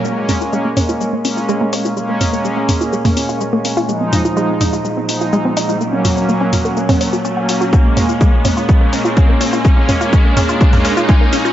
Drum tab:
HH |--o---o---o---o-|--o---o--oo---o-|--o---o---o---o-|--o---o--oo---o-|
SH |x-xxx-xxx-xxx-xx|x-xxx-xxx-xxx-xx|x-xxx-xxx-xxx-xx|x-xxx-xxx-xxx-xx|
T2 |--o---o---------|--o---o--o------|--o---o---------|--o---o--o------|
BD |----------------|----------------|----------------|----------------|

HH |--o---o---o---o-|--o---o--oo---o-|
SH |x-xxx-xxx-xxx-xx|x-xxx-xxx-xxx-xx|
T2 |--o---o---------|--o---o--o------|
BD |o---o---o---o---|o---o---o---o---|